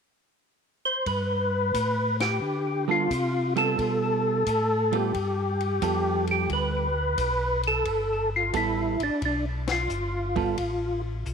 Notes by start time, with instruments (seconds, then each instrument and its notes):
0.85 tonewheel organ C5
1.06 tonewheel organ G2 B4, kick, ride
1.74 tonewheel organ A2, kick, hi-hat pedal, ride
2.20 tonewheel organ G4, snare, ride
2.42 tonewheel organ D3
2.88 hollow-body jazz guitar G3 B3 F4 A4, tonewheel organ F4
3.10 tonewheel organ C3, kick, hi-hat pedal, ride
3.56 hollow-body jazz guitar G3 B3 F4 A4, tonewheel organ A4, ride
3.78 tonewheel organ B2, kick, ride
4.46 tonewheel organ A2, kick, hi-hat pedal, ride
4.92 hollow-body jazz guitar G3 B3 F4 A4, tonewheel organ G4, ride
5.14 tonewheel organ G2, kick, ride
5.60 ride
5.82 tonewheel organ F2, hollow-body jazz guitar G3 B3 F4 A4, kick, hi-hat pedal, ride
6.27 tonewheel organ G4, ride
6.50 tonewheel organ D2 B4, kick, ride
7.18 tonewheel organ B1, kick, hi-hat pedal, ride
7.63 ride
7.67 tonewheel organ A4
7.85 tonewheel organ G1, kick, ride
8.36 tonewheel organ F4
8.53 tonewheel organ A1 E4, hollow-body jazz guitar G3 B3 A4, kick, hi-hat pedal, ride
8.99 tonewheel organ A1 D4, ride
9.22 tonewheel organ B1 D4, kick, ride
9.68 tonewheel organ F4, snare, ride
9.89 tonewheel organ G1, hi-hat pedal
10.36 hollow-body jazz guitar G3 B3 F4 A4, kick, ride
10.58 tonewheel organ A1, kick, ride
11.26 tonewheel organ B1, hi-hat pedal